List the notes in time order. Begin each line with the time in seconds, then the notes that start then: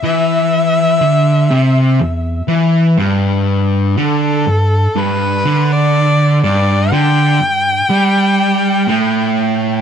0.03 E3 E5
1.01 D3
1.51 C3
2.00 E2
2.48 E3
2.98 G2
3.97 D3 A4
4.47 G2
4.96 G2 B4
5.45 D3
5.73 D5
6.43 G2 D5
6.92 D3 G5
7.41 G2
7.90 G3
8.88 A2